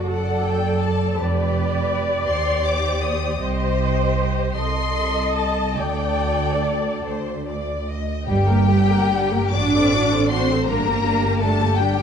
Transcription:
0.00 1.14 F#1 medium
0.00 1.14 F#2 medium
0.00 0.12 F#4 medium
0.00 0.11 D5 medium
0.11 1.16 A4 medium
0.11 1.18 A4 medium
0.11 1.16 D5 medium
0.11 0.44 F#5 medium
0.45 0.82 G5 medium
0.81 1.17 A5 medium
1.17 2.25 F1 medium
1.17 2.25 F2 medium
1.17 2.25 G4 medium
1.17 2.27 B4 medium
1.17 3.40 D5 loud
2.26 3.38 D#2 medium
2.26 3.38 G4 medium
2.26 3.40 C5 medium
2.26 2.62 C6 loud
2.64 3.02 D6 loud
3.02 3.40 D#6 medium
3.39 4.54 C2 medium
3.39 4.54 G4 medium
3.39 4.56 C5 medium
3.39 4.53 D#5 medium
4.55 5.75 C2 medium
4.55 5.77 A4 medium
4.55 5.76 D#5 medium
4.55 5.32 C6 loud
5.37 5.78 A5 loud
5.78 7.03 D2 medium
5.78 7.04 D2 medium
5.78 7.03 A4 medium
5.78 7.05 D5 medium
5.78 7.67 D5 medium
5.78 7.05 G5 loud
7.04 8.04 D2 medium
7.04 8.05 D2 medium
7.04 7.44 C5 medium
7.48 7.88 D5 medium
7.89 8.28 D#5 medium
8.26 9.38 G1 loud
8.26 8.46 G3 medium
8.26 9.50 G3 loud
8.26 8.46 G4 medium
8.26 9.50 G4 loud
8.26 9.49 G5 loud
8.48 8.68 A#3 medium
8.48 8.68 A#4 medium
8.68 8.90 G3 medium
8.68 8.90 G4 medium
8.90 9.11 A#3 medium
8.90 9.11 A#4 medium
9.12 9.31 G3 medium
9.12 9.31 G4 medium
9.33 9.54 A#3 medium
9.33 9.53 A#4 medium
9.53 10.54 A1 medium
9.53 10.29 D4 loud
9.53 9.73 D4 medium
9.53 9.73 F#4 medium
9.53 10.30 D5 loud
9.53 10.31 D6 loud
9.74 9.93 C4 medium
9.74 9.93 A4 medium
9.94 10.12 D4 medium
9.94 10.12 F#4 medium
10.12 10.31 C4 medium
10.12 10.31 A4 medium
10.30 10.68 C4 medium
10.30 10.48 D4 medium
10.30 10.48 F#4 medium
10.30 10.67 C5 loud
10.30 10.67 C6 loud
10.51 10.69 C4 medium
10.51 10.69 A4 medium
10.67 11.65 G1 medium
10.67 10.85 G3 medium
10.67 11.40 A#3 loud
10.67 10.85 D4 medium
10.67 11.42 A#4 loud
10.67 11.40 A#5 loud
10.87 11.05 A#3 medium
10.87 11.05 G4 medium
11.05 11.23 G3 medium
11.05 11.23 D4 medium
11.24 11.42 A#3 medium
11.24 11.42 G4 medium
11.41 11.59 G3 medium
11.41 11.79 A3 medium
11.41 11.59 D4 medium
11.41 11.78 A4 medium
11.41 11.78 A5 loud
11.60 11.79 A#3 medium
11.60 11.79 G4 medium
11.78 12.02 G1 medium
11.78 12.02 G3 medium
11.78 11.98 G3 medium
11.78 11.98 D4 medium
11.78 12.02 G4 loud
11.78 12.02 G5 loud
11.98 12.02 A#3 medium
11.98 12.02 G4 medium

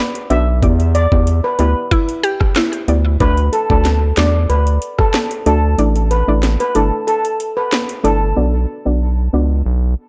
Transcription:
0.15 closed hi-hat medium
0.30 0.64 B1 medium
0.30 0.47 B3 medium
0.30 0.47 D4 medium
0.30 0.48 F#4 medium
0.30 0.48 D5 medium
0.30 0.44 E5 medium
0.30 closed hi-hat medium
0.63 1.07 E2 loud
0.63 0.80 B3 medium
0.63 0.80 E4 medium
0.63 0.80 G4 medium
0.63 0.80 D5 loud
0.63 kick loud
0.63 closed hi-hat medium
0.80 closed hi-hat soft
0.95 1.08 D5 medium
0.95 closed hi-hat medium
1.12 1.41 E2 loud
1.12 1.56 B3 medium
1.12 1.56 E4 medium
1.12 1.56 G4 medium
1.12 1.56 D5 medium
1.12 kick medium
1.27 closed hi-hat medium
1.44 1.56 B4 medium
1.59 1.75 D2 medium
1.59 1.89 B3 medium
1.59 1.89 E4 medium
1.59 1.89 G4 medium
1.59 1.72 B4 medium
1.59 1.89 D5 medium
1.59 closed hi-hat medium
1.91 2.25 E4 loud
1.91 kick medium
1.91 closed hi-hat medium
2.09 closed hi-hat medium
2.23 2.54 G4 loud
2.23 closed hi-hat medium
2.40 kick medium
2.40 cross-stick medium
2.56 3.02 E4 medium
2.56 snare loud
2.56 closed hi-hat medium
2.73 closed hi-hat medium
2.88 3.17 D2 medium
2.88 3.05 B3 medium
2.88 3.05 E4 medium
2.88 3.06 G4 medium
2.88 3.06 D5 medium
2.88 closed hi-hat medium
3.20 3.50 D2 loud
3.20 3.38 A3 medium
3.20 3.38 D4 medium
3.20 3.38 F#4 medium
3.20 3.34 B4 loud
3.20 3.38 D5 loud
3.20 kick loud
3.20 closed hi-hat medium
3.37 closed hi-hat soft
3.53 3.66 A4 medium
3.53 closed hi-hat medium
3.70 4.13 D2 medium
3.70 4.14 A3 medium
3.70 4.14 D4 medium
3.70 4.14 F#4 medium
3.70 3.95 A4 medium
3.70 4.14 D5 medium
3.70 kick medium
3.85 snare medium
3.85 closed hi-hat medium
4.17 4.46 E2 loud
4.17 4.47 A3 medium
4.17 4.47 D4 medium
4.17 4.47 F#4 medium
4.17 4.43 D5 medium
4.17 4.47 D5 medium
4.17 snare loud
4.17 closed hi-hat medium
4.49 4.79 D2 loud
4.49 4.63 B4 medium
4.49 closed hi-hat medium
4.67 closed hi-hat medium
4.82 closed hi-hat medium
4.99 5.11 A4 medium
4.99 kick medium
4.99 cross-stick loud
5.14 snare loud
5.14 closed hi-hat medium
5.31 closed hi-hat medium
5.46 5.75 D2 medium
5.46 5.63 A3 medium
5.46 5.63 D4 medium
5.46 5.64 F#4 medium
5.46 5.60 A4 loud
5.46 5.64 D5 medium
5.46 closed hi-hat medium
5.78 6.23 A1 loud
5.78 5.96 A3 medium
5.78 5.96 D4 medium
5.78 5.96 E4 medium
5.78 5.96 D5 loud
5.78 closed hi-hat medium
5.96 closed hi-hat soft
6.11 6.24 B4 medium
6.11 closed hi-hat medium
6.28 6.57 A1 loud
6.28 6.72 A3 medium
6.28 6.72 D4 medium
6.28 6.72 E4 medium
6.28 6.72 D5 medium
6.43 snare medium
6.43 closed hi-hat medium
6.60 6.72 B4 medium
6.60 closed hi-hat medium
6.75 6.91 G1 medium
6.75 7.05 A3 medium
6.75 7.05 D4 medium
6.75 7.05 E4 medium
6.75 6.89 A4 medium
6.75 7.05 D5 medium
6.75 closed hi-hat medium
7.07 7.21 A4 medium
7.07 closed hi-hat medium
7.25 closed hi-hat medium
7.40 closed hi-hat medium
7.57 7.69 B4 medium
7.72 snare loud
7.72 closed hi-hat medium
7.89 closed hi-hat medium
8.04 8.33 G1 medium
8.04 8.21 A3 medium
8.04 8.21 D4 medium
8.04 8.22 E4 medium
8.04 8.18 A4 medium
8.04 8.22 D5 medium
8.04 closed hi-hat medium
8.36 8.66 B1 loud
8.36 8.54 B3 medium
8.36 8.54 D4 medium
8.36 8.54 F#4 medium
8.36 8.54 D5 loud
8.85 9.29 B1 medium
8.85 9.29 B3 medium
8.85 9.30 D4 medium
8.85 9.30 F#4 medium
8.85 9.30 D5 medium
9.33 9.62 C#2 medium
9.33 9.63 B3 medium
9.33 9.63 D4 medium
9.33 9.63 F#4 medium
9.33 9.63 D5 medium
9.66 9.95 B1 loud

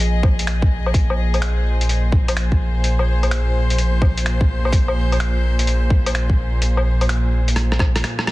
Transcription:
0.00 0.93 A#1 medium
0.00 0.92 A#2 medium
0.00 8.32 F3 medium
0.00 8.32 G#4 medium
0.00 2.68 D#5 medium
0.00 closed hi-hat medium
0.23 kick loud
0.23 low woodblock soft
0.39 closed hi-hat medium
0.47 finger snap loud
0.47 closed hi-hat medium
0.62 kick loud
0.86 low woodblock medium
0.93 8.03 A#1 medium
0.93 8.32 A#2 medium
0.93 kick loud
0.93 closed hi-hat medium
1.10 low woodblock medium
1.34 closed hi-hat soft
1.34 low woodblock medium
1.42 finger snap loud
1.42 closed hi-hat medium
1.47 8.32 C5 medium
1.81 closed hi-hat medium
1.89 closed hi-hat medium
2.12 kick loud
2.28 closed hi-hat medium
2.28 low woodblock medium
2.37 finger snap loud
2.37 closed hi-hat medium
2.52 kick medium
2.84 closed hi-hat medium
2.99 low woodblock medium
3.23 closed hi-hat soft
3.23 low woodblock medium
3.31 finger snap loud
3.31 closed hi-hat medium
3.70 closed hi-hat medium
3.78 closed hi-hat medium
4.02 kick loud
4.02 low woodblock soft
4.18 closed hi-hat medium
4.26 finger snap loud
4.26 closed hi-hat medium
4.41 kick loud
4.65 low woodblock medium
4.72 kick loud
4.72 closed hi-hat medium
4.88 low woodblock medium
5.12 closed hi-hat soft
5.12 low woodblock medium
5.20 finger snap loud
5.20 closed hi-hat medium
5.59 closed hi-hat medium
5.67 closed hi-hat medium
5.90 kick loud
6.06 closed hi-hat medium
6.06 low woodblock medium
6.15 finger snap loud
6.15 closed hi-hat medium
6.30 kick medium
6.62 closed hi-hat medium
6.77 low woodblock medium
7.01 closed hi-hat soft
7.01 low woodblock medium
7.09 finger snap loud
7.09 closed hi-hat medium
7.48 closed hi-hat medium
7.56 cross-stick medium
7.56 closed hi-hat medium
7.72 cross-stick medium
7.79 kick loud
7.79 cross-stick medium
7.79 low woodblock soft
7.96 cross-stick medium
7.96 closed hi-hat medium
8.04 finger snap loud
8.04 cross-stick medium
8.04 closed hi-hat medium
8.19 cross-stick medium
8.27 cross-stick loud
8.27 closed hi-hat soft

